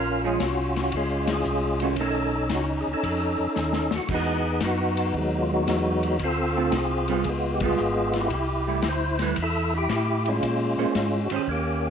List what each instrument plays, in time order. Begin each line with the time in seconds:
Already playing: tonewheel organ A#1 C#4 F4 A#4
0.24 hollow-body jazz guitar F3 G#3 C#4, tonewheel organ G#4
0.39 tonewheel organ C2 C#4 F#4, kick, snare, hi-hat pedal, ride
0.76 snare, ride
0.92 tonewheel organ C#2, kick, ride
0.96 tonewheel organ G#3 C#4 F4
1.27 snare, ride
1.32 tonewheel organ C#4 F4 G#4
1.44 tonewheel organ C2, hi-hat pedal
1.80 hollow-body jazz guitar D#3 A3 C#4, tonewheel organ F#4, ride
1.96 tonewheel organ B1, hollow-body jazz guitar D#3, kick, ride
2.00 hollow-body jazz guitar A3 C#4, tonewheel organ C#4 D#4 A4
2.49 tonewheel organ C#2, kick, snare, hi-hat pedal, ride
2.55 tonewheel organ F#4
2.81 tonewheel organ G#4
2.87 tonewheel organ C#2
2.93 tonewheel organ C#4 D#4 A4
3.03 tonewheel organ F2, kick, ride
3.39 tonewheel organ F2
3.56 tonewheel organ D#2, snare, hi-hat pedal
3.73 snare
3.91 tonewheel organ D#2, snare
3.96 tonewheel organ F#4
4.08 tonewheel organ E2, hollow-body jazz guitar E3 G#3 D#4 F#4, kick, crash
4.14 tonewheel organ B3 D#4 G#4
4.61 tonewheel organ F#2 D#4, kick, snare, hi-hat pedal, ride
4.65 tonewheel organ B3 F#4
4.97 ride
5.14 tonewheel organ D#2 F#3 G#3 D#4, kick
5.42 tonewheel organ F4
5.53 tonewheel organ B3 D#4 F#4
5.67 tonewheel organ E2, kick, snare, hi-hat pedal, ride
6.03 ride
6.07 tonewheel organ F#4
6.19 tonewheel organ D2, kick, ride
6.24 tonewheel organ C4 F4 A4
6.57 hollow-body jazz guitar D3 A3 C4 F4
6.72 tonewheel organ C2, kick, snare, hi-hat pedal, ride
6.76 tonewheel organ C4 F4 G#4
7.08 hollow-body jazz guitar G3 B3 F4, ride
7.24 tonewheel organ C#2, kick, ride
7.29 tonewheel organ G#3 B3 F4
7.54 tonewheel organ G4
7.60 hollow-body jazz guitar G3 B3 F4, kick, ride
7.65 tonewheel organ B3 F4 G#4
7.77 tonewheel organ G#1, hi-hat pedal
8.13 snare, ride
8.19 tonewheel organ E4 G4
8.30 tonewheel organ C2, kick, ride
8.67 hollow-body jazz guitar G3 A3 E4
8.82 tonewheel organ D2, kick, snare, hi-hat pedal, ride
8.88 tonewheel organ C5
9.19 hollow-body jazz guitar G3 A3 E4, tonewheel organ B4, snare, ride
9.36 tonewheel organ E2, kick, ride
9.42 tonewheel organ E4 A4
9.75 tonewheel organ E4 G4
9.89 tonewheel organ A2, kick, snare, hi-hat pedal, ride
10.26 tonewheel organ G#3 C#4, ride
10.30 tonewheel organ F4
10.43 tonewheel organ A#2, kick, ride
10.78 tonewheel organ A#2, hollow-body jazz guitar A#3 C#4 G#4 C5
10.95 tonewheel organ G#2, kick, snare, hi-hat pedal, ride
11.24 tonewheel organ F#4
11.30 tonewheel organ G#2, hollow-body jazz guitar D#3 C#4 G4 C5, ride
11.36 tonewheel organ G#4
11.48 tonewheel organ D#2 A#3 C#4 G4, kick